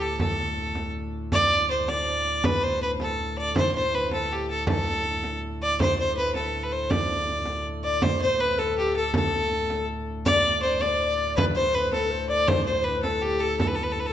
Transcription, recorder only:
7.85 8.02 D5 medium
8.02 8.20 C5 medium
8.21 8.41 C5 medium
8.39 8.60 B4 medium
8.58 8.95 A4 medium
8.96 9.13 A4 medium
9.15 9.85 A4 medium
10.26 10.78 D5 medium
10.81 11.39 D5 medium
11.37 11.57 B4 medium
11.56 11.75 C5 medium
11.74 11.94 B4 medium
11.93 12.12 A4 medium
12.11 12.31 C5 medium
12.30 12.50 D5 medium
12.49 12.67 C5 medium
12.68 12.85 C5 medium
12.87 13.06 B4 medium
13.04 13.41 A4 medium
13.42 13.59 A4 soft
14.08 14.13 A4 medium

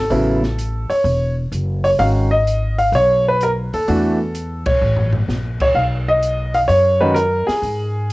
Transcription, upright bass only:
0.10 0.86 A1 medium
0.90 muted upright bass stroke soft
1.04 1.48 E1 medium
1.52 1.96 F#1 medium
1.99 2.89 G#1 medium
2.92 3.68 B1 medium
3.73 3.86 D#2 medium
3.88 4.63 E2 medium
4.66 4.80 B1 medium
4.81 5.25 A1 medium
5.28 5.71 A#1 medium
5.75 6.64 B1 medium
6.69 7.43 F#2 medium
7.48 muted upright bass stroke soft
7.62 8.13 G#2 medium

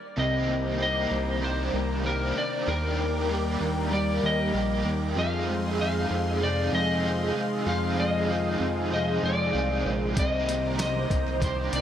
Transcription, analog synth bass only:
0.17 1.07 C2 loud
1.11 1.70 C2 medium
1.74 2.33 C2 loud
2.68 3.57 D#2 loud
3.61 4.20 D#2 medium
4.23 4.53 D#2 loud
4.54 4.84 A#1 medium
4.85 5.15 D#2 medium
5.16 6.06 F2 loud
6.10 6.70 F2 loud
6.73 7.32 F2 loud
7.66 8.56 F2 loud
8.60 9.20 F2 medium
9.23 9.53 F2 loud
9.54 9.84 C2 medium
9.86 10.15 A#1 medium
10.17 11.07 C2 loud
11.10 11.70 C2 loud
11.73 11.81 C2 loud

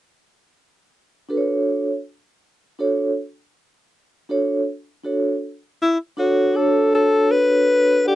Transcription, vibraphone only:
1.29 1.86 D4 medium
1.29 1.86 F#4 medium
1.29 1.86 A4 medium
1.29 1.39 B4 medium
1.37 1.90 C#5 medium
2.79 3.09 D4 medium
2.79 3.09 F#4 medium
2.79 3.09 A4 medium
2.79 3.09 C#5 medium
4.29 4.59 D4 medium
4.29 4.59 F#4 medium
4.29 4.59 A4 medium
4.29 4.60 C#5 medium
5.04 5.34 D4 medium
5.04 5.34 F#4 medium
5.04 5.34 A4 medium
5.04 5.34 C#5 medium
6.17 6.53 D4 medium
6.17 6.53 F#4 medium
6.17 6.54 A4 medium
6.17 6.55 C#5 medium
6.54 6.86 D4 medium
6.54 6.87 F#4 medium
6.54 6.87 A4 medium
6.54 6.87 C#5 medium
6.91 7.99 D4 medium
6.91 7.99 F#4 soft
6.91 8.00 A4 soft
6.91 8.00 C#5 medium
8.04 8.15 D4 medium
8.04 8.15 A4 soft
8.04 8.15 D5 medium
8.04 8.15 F#5 soft

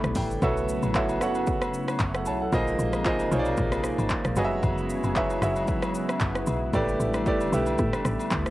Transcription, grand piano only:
0.00 0.44 A3 medium
0.00 0.44 E4 medium
0.00 0.44 G4 medium
0.00 0.44 B4 medium
0.00 0.43 C#5 loud
0.00 0.43 D5 loud
0.00 0.14 B5 medium
0.16 0.41 G5 medium
0.42 0.85 B3 medium
0.42 0.85 F#4 medium
0.42 0.85 A4 medium
0.42 0.86 C#5 medium
0.42 0.86 E5 loud
0.95 1.16 B3 medium
0.95 1.16 F#4 medium
0.95 1.17 A4 medium
0.95 1.17 C#5 medium
0.95 1.17 E5 loud
1.21 2.06 B3 medium
1.21 2.06 F#4 medium
1.21 2.00 A4 medium
1.21 2.00 C#5 medium
1.21 2.01 F#5 loud
2.15 2.26 A4 medium
2.15 2.26 F#5 medium
2.27 2.41 C#5 medium
2.27 2.40 A5 medium
2.41 2.66 A4 medium
2.41 2.66 F#5 medium
2.53 2.96 A#3 medium
2.53 2.96 F4 medium
2.53 2.96 G#4 medium
2.53 2.96 C5 medium
2.53 2.96 D#5 loud
3.05 3.27 A#3 medium
3.05 3.27 F4 medium
3.05 3.27 G#4 medium
3.05 3.27 C5 medium
3.05 3.27 D#5 loud
3.32 4.16 A#3 medium
3.32 4.16 F4 medium
3.32 4.17 G#4 medium
3.32 4.17 C5 medium
3.32 3.39 C#5 medium
3.39 4.20 D5 loud
4.37 5.01 F#3 loud
4.37 5.01 F#4 medium
4.37 5.01 G#4 medium
4.37 5.01 B4 medium
4.37 4.44 D#5 medium
4.44 5.05 E5 loud
5.16 5.37 F#3 medium
5.16 5.37 F#4 medium
5.16 5.38 G#4 medium
5.16 5.38 B4 medium
5.16 5.38 E5 loud
5.42 6.27 F#3 medium
5.42 6.27 F#4 medium
5.42 6.27 G#4 medium
5.42 6.27 B4 medium
5.42 6.27 E5 loud
6.74 7.17 A3 medium
6.74 7.17 E4 medium
6.74 7.17 G4 medium
6.74 7.17 B4 medium
6.74 7.17 D5 loud
7.26 7.48 A3 medium
7.26 7.48 E4 medium
7.26 7.48 G4 medium
7.26 7.48 B4 medium
7.26 7.48 D5 loud
7.53 8.37 A3 medium
7.53 8.37 E4 medium
7.53 8.38 G4 medium
7.53 8.38 B4 medium
7.53 8.38 E5 loud

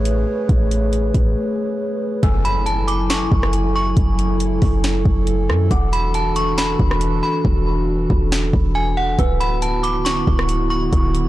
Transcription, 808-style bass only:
0.00 0.26 A1 loud
0.49 1.12 A1 loud
1.14 1.35 A1 loud
2.23 3.28 F#1 loud
3.32 3.94 F#1 loud
3.97 4.59 F#1 loud
4.62 5.04 F#1 loud
5.05 5.51 F#1 loud
5.49 5.70 F#2 loud
5.71 6.76 E1 loud
6.79 7.21 E1 loud
7.45 8.07 E1 loud
8.10 8.52 E1 loud
8.53 9.16 E1 loud
9.19 10.23 D1 loud
10.27 10.90 D1 loud
10.93 11.29 D1 loud

